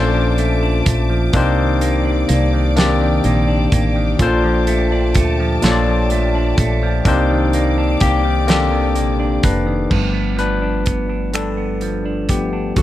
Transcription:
Already playing: fm bass A#1, clean electric guitar A#2 F3 A3 D4, tine electric piano A#2 C#4 D4 F4 A4 C5, string section A4 A5 D6
0.14 clean electric guitar F3
0.38 clean electric guitar A3, closed hi-hat
0.63 clean electric guitar D4
0.85 fm bass A#1, clean electric guitar A3, kick, closed hi-hat
1.10 clean electric guitar F3
1.33 fm bass C2, clean electric guitar C3, tine electric piano A#3 D4 D#4 G4 C5, string section G4 D5, kick, closed hi-hat
1.58 clean electric guitar D#3
1.81 clean electric guitar A#3, closed hi-hat
2.05 clean electric guitar D4
2.28 fm bass C2, clean electric guitar A#3, closed hi-hat
2.53 clean electric guitar D#3
2.76 clean electric guitar C3, tine electric piano D#3 A#3 D4 G4 D5, snare, closed hi-hat
3.01 clean electric guitar D#3
3.24 fm bass A#1, clean electric guitar A#3, closed hi-hat
3.48 clean electric guitar D4
3.72 fm bass A1, clean electric guitar A#3, kick, closed hi-hat
3.96 clean electric guitar D#3
4.19 fm bass A#1, tine electric piano A#2 C#4 F4 A4 C5, clean electric guitar A#2, string section A5, kick, closed hi-hat
4.26 tine electric piano D4
4.44 clean electric guitar F3
4.67 clean electric guitar A3, closed hi-hat
4.92 clean electric guitar D4
5.15 fm bass D2, clean electric guitar A3, kick, closed hi-hat
5.40 clean electric guitar F3
5.61 fm bass A#1, tine electric piano A#2 D4 F4 A4 C#5, clean electric guitar A#2, snare, closed hi-hat
5.72 tine electric piano D5
5.88 clean electric guitar F3
6.10 clean electric guitar A3, closed hi-hat
6.35 clean electric guitar D4
6.58 fm bass A#1, clean electric guitar A3, kick, closed hi-hat
6.83 clean electric guitar F3
7.05 fm bass C2, clean electric guitar C3, tine electric piano A#3 D4 D#4 G4 C5, string section D5 D6, kick, closed hi-hat
7.30 clean electric guitar D#3
7.53 clean electric guitar A#3, closed hi-hat
7.78 clean electric guitar D4
8.00 fm bass C2, clean electric guitar A#3, tine electric piano A#3 G4, kick, closed hi-hat
8.25 clean electric guitar D#3
8.48 clean electric guitar C3, tine electric piano D#3 A#3 D4 G4 A4, snare, closed hi-hat
8.72 clean electric guitar D#3
8.96 fm bass A#1, clean electric guitar A#3, closed hi-hat
9.20 clean electric guitar D4
9.43 fm bass F1, clean electric guitar A#3, tine electric piano D4 B4, kick, closed hi-hat
9.66 clean electric guitar D#3
9.90 fm bass G1, clean electric guitar G2 D4, tine electric piano F3 A3 B3, kick, crash
10.14 clean electric guitar B3
10.37 clean electric guitar F3, tine electric piano D4 B4, closed hi-hat
10.62 clean electric guitar D4
10.86 clean electric guitar B3, kick, closed hi-hat
11.09 clean electric guitar D4
11.33 clean electric guitar G2 D4, tine electric piano D4 A4, finger snap, closed hi-hat
11.57 clean electric guitar B3
11.81 clean electric guitar F3, closed hi-hat
12.05 clean electric guitar D4
12.29 tine electric piano F3 A3 B3 G4, clean electric guitar B3, kick, closed hi-hat
12.53 clean electric guitar D4
12.76 fm bass D2, clean electric guitar D3 F#4, tine electric piano F#3 A#3 C4 F#4 A4, kick, closed hi-hat

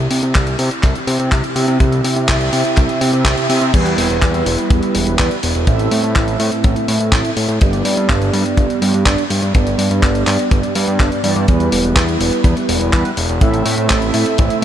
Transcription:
Already playing: analog polysynth C3 C4 E4 G4 E5
0.11 analog synth bass C3, open hi-hat
0.23 analog synth bass C3, closed hi-hat
0.35 analog synth bass C2, kick, clap, closed hi-hat
0.47 closed hi-hat
0.59 analog synth bass C3, open hi-hat
0.71 closed hi-hat
0.83 analog synth bass C2, kick, clap, closed hi-hat
0.95 closed hi-hat
1.07 analog synth bass C3, open hi-hat
1.20 analog synth bass C3, closed hi-hat
1.32 analog synth bass C2, kick, clap, closed hi-hat
1.44 closed hi-hat
1.56 analog synth bass C3, analog polysynth C3 C4 E4 G4 E5, open hi-hat
1.68 analog synth bass C3, closed hi-hat
1.80 analog synth bass C2, analog polysynth C3 C4 E4 G4 E5, kick, closed hi-hat
1.92 closed hi-hat
2.04 analog synth bass C3, open hi-hat
2.16 analog synth bass C3, closed hi-hat
2.29 analog synth bass C2, kick, clap, closed hi-hat
2.41 closed hi-hat
2.53 analog synth bass C3, open hi-hat
2.65 closed hi-hat
2.77 analog synth bass C2, kick, clap, closed hi-hat
2.89 closed hi-hat
3.01 analog synth bass C3, open hi-hat
3.13 analog synth bass C3, closed hi-hat
3.25 analog synth bass C2, kick, clap, closed hi-hat
3.38 closed hi-hat
3.49 analog synth bass C3, analog polysynth C4 E4 G4 E5, open hi-hat
3.61 analog synth bass C3, closed hi-hat
3.74 analog synth bass E2, analog polysynth G3 B3 E4 B4, kick, closed hi-hat, crash
3.86 closed hi-hat
3.98 analog synth bass E1, open hi-hat
4.10 analog synth bass E1, closed hi-hat
4.22 analog synth bass E2, kick, clap, closed hi-hat
4.34 closed hi-hat
4.46 analog synth bass E1, open hi-hat
4.58 closed hi-hat
4.70 analog synth bass E2, kick, closed hi-hat
4.83 closed hi-hat
4.95 analog synth bass E1, open hi-hat
5.07 analog synth bass E1, closed hi-hat
5.19 analog synth bass E2, analog polysynth G3 B3 E4 B4, kick, clap, closed hi-hat
5.31 closed hi-hat
5.43 analog synth bass E1, open hi-hat
5.55 analog synth bass E1, closed hi-hat
5.67 analog synth bass A1, analog polysynth A2 C4 E4 A4 E5, kick, closed hi-hat
5.79 closed hi-hat
5.91 analog synth bass A2, open hi-hat
6.04 analog synth bass A2, closed hi-hat
6.16 analog synth bass A1, kick, clap, closed hi-hat
6.28 closed hi-hat
6.40 analog synth bass A2, open hi-hat
6.52 closed hi-hat
6.64 analog synth bass A1, kick, closed hi-hat
6.76 closed hi-hat
6.88 analog synth bass A2, open hi-hat
7.00 analog synth bass A2, closed hi-hat
7.12 analog synth bass A1, analog polysynth A2 C4 E4 A4 E5, kick, clap, closed hi-hat
7.25 closed hi-hat
7.37 analog synth bass A2, open hi-hat
7.49 analog synth bass A2, closed hi-hat
7.61 analog synth bass G1, analog polysynth G2 B3 D4 G4 D5, kick, closed hi-hat
7.73 closed hi-hat
7.85 analog synth bass G2, open hi-hat
7.97 analog synth bass G2, closed hi-hat
8.09 analog synth bass G1, kick, clap, closed hi-hat
8.22 closed hi-hat
8.33 analog synth bass G2, open hi-hat
8.46 closed hi-hat
8.57 analog synth bass G1, kick, closed hi-hat
8.70 closed hi-hat
8.82 analog synth bass G2, open hi-hat
8.94 analog synth bass G2, closed hi-hat
9.06 analog synth bass G1, analog polysynth G2 B3 D4 G4 D5, kick, clap, closed hi-hat
9.18 closed hi-hat
9.30 analog synth bass G2, open hi-hat
9.42 analog synth bass G2, closed hi-hat
9.54 analog synth bass G1, analog polysynth G2 B3 D4 G4 D5, kick, closed hi-hat
9.67 closed hi-hat
9.78 analog synth bass G2, open hi-hat
9.91 analog synth bass G2, closed hi-hat
10.03 analog synth bass G1, kick, clap, closed hi-hat
10.15 closed hi-hat
10.27 analog synth bass G2, clap, open hi-hat
10.39 closed hi-hat
10.51 analog synth bass G1, kick, closed hi-hat
10.63 closed hi-hat
10.75 analog polysynth G2 B3 D4 G4 D5, analog synth bass G2, open hi-hat
10.88 analog synth bass G2, closed hi-hat
11.00 analog synth bass G1, kick, clap, closed hi-hat
11.12 closed hi-hat
11.24 analog synth bass G2, analog polysynth E3 B3 D4 G4 D5, open hi-hat
11.36 analog synth bass G2, closed hi-hat
11.48 analog synth bass E2, analog polysynth G3 B3 E4 B4, kick, closed hi-hat
11.60 closed hi-hat
11.72 analog synth bass E1, open hi-hat
11.84 analog synth bass E1, closed hi-hat
11.96 analog synth bass E2, kick, clap, closed hi-hat
12.08 closed hi-hat
12.21 analog synth bass E1, open hi-hat
12.33 closed hi-hat
12.44 analog synth bass E2, kick, closed hi-hat
12.57 closed hi-hat
12.69 analog synth bass E1, open hi-hat
12.81 analog synth bass E1, closed hi-hat
12.93 analog synth bass E2, analog polysynth G3 B3 E4 B4, kick, clap, closed hi-hat
13.05 closed hi-hat
13.17 analog synth bass E1, open hi-hat
13.29 analog synth bass E1, closed hi-hat
13.41 analog synth bass A1, analog polysynth A2 C4 E4 A4 E5, kick, closed hi-hat
13.54 closed hi-hat
13.65 analog synth bass A2, open hi-hat
13.78 analog synth bass A2, closed hi-hat
13.90 analog synth bass A1, kick, clap, closed hi-hat
14.02 closed hi-hat
14.14 analog synth bass A2, open hi-hat
14.26 closed hi-hat
14.38 analog synth bass A1, kick, closed hi-hat
14.50 closed hi-hat

